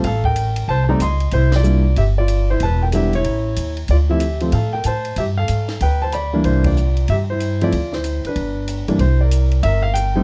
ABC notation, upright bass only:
X:1
M:4/4
L:1/8
Q:"Swing" 1/4=187
K:Cmix
V:1 name="Upright bass" clef=bass
A,,,4 C,,2 _D,,2 | C,,4 G,,,4 | E,,,4 A,,,2 _E,,2 | D,,4 A,,2 A,,2 |
G,,2 _A,,2 D,,4 | C,,4 G,,4 | D,,3 z G,,,3 G,, | C,,4 G,,,4 |]